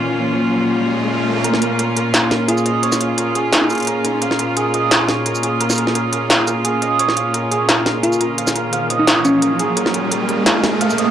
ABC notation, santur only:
X:1
M:4/4
L:1/8
Q:1/4=173
K:Bbm
V:1 name="Santur"
z8 | B B B B f B A e | d f B A B B B B | f B A e d f B A |
B B B B f B A e | d f B A B B B B | f B f e d f B A | B B B B f B f e |]